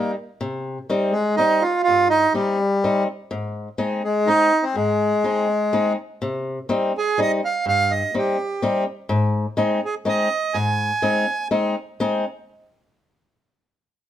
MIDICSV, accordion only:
0, 0, Header, 1, 2, 480
1, 0, Start_track
1, 0, Key_signature, -4, "major"
1, 0, Tempo, 490597
1, 392, Time_signature, 3, 2, 24, 8
1, 2309, Tempo, 480769
1, 10469, Tempo, 490196
1, 13954, End_track
2, 0, Start_track
2, 0, Title_t, "Accordion"
2, 0, Program_c, 0, 21
2, 0, Note_on_c, 0, 58, 69
2, 111, Note_off_c, 0, 58, 0
2, 1093, Note_on_c, 0, 56, 89
2, 1326, Note_off_c, 0, 56, 0
2, 1335, Note_on_c, 0, 63, 102
2, 1579, Note_on_c, 0, 65, 79
2, 1597, Note_off_c, 0, 63, 0
2, 1777, Note_off_c, 0, 65, 0
2, 1792, Note_on_c, 0, 65, 109
2, 2037, Note_off_c, 0, 65, 0
2, 2055, Note_on_c, 0, 63, 107
2, 2282, Note_off_c, 0, 63, 0
2, 2289, Note_on_c, 0, 55, 82
2, 2985, Note_off_c, 0, 55, 0
2, 3989, Note_on_c, 0, 56, 87
2, 4212, Note_on_c, 0, 63, 116
2, 4231, Note_off_c, 0, 56, 0
2, 4574, Note_on_c, 0, 60, 79
2, 4590, Note_off_c, 0, 63, 0
2, 4695, Note_on_c, 0, 56, 93
2, 4702, Note_off_c, 0, 60, 0
2, 5872, Note_off_c, 0, 56, 0
2, 6920, Note_on_c, 0, 68, 92
2, 7143, Note_off_c, 0, 68, 0
2, 7159, Note_on_c, 0, 75, 105
2, 7259, Note_off_c, 0, 75, 0
2, 7392, Note_on_c, 0, 77, 86
2, 7596, Note_off_c, 0, 77, 0
2, 7623, Note_on_c, 0, 77, 119
2, 7854, Note_on_c, 0, 75, 90
2, 7860, Note_off_c, 0, 77, 0
2, 8088, Note_off_c, 0, 75, 0
2, 8122, Note_on_c, 0, 67, 66
2, 8778, Note_off_c, 0, 67, 0
2, 9786, Note_on_c, 0, 68, 84
2, 9884, Note_off_c, 0, 68, 0
2, 10023, Note_on_c, 0, 75, 97
2, 10475, Note_on_c, 0, 80, 95
2, 10502, Note_off_c, 0, 75, 0
2, 11394, Note_off_c, 0, 80, 0
2, 13954, End_track
0, 0, End_of_file